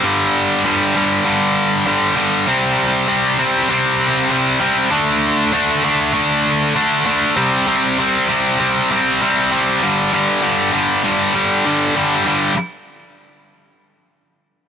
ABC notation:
X:1
M:4/4
L:1/8
Q:1/4=98
K:Cdor
V:1 name="Distorted electric guitar" clef=bass
[G,,D,G,]2 [G,,D,G,] [G,,D,G,] [G,,D,G,]2 [G,,D,G,] [G,,D,G,] | [C,G,C]2 [C,G,C] [C,G,C] [C,G,C]2 [C,G,C] [C,G,C] | [D,A,D]2 [D,A,D] [D,A,D] [D,A,D]2 [D,A,D] [D,A,D] | [C,G,C] [C,G,C] [C,G,C] [C,G,C] [C,G,C] [C,G,C] [C,G,C] [C,G,C] |
[G,,D,G,] [G,,D,G,] [G,,D,G,] [G,,D,G,] [G,,D,G,] [G,,D,G,] [G,,D,G,] [G,,D,G,] | [G,,D,G,] z6 z |]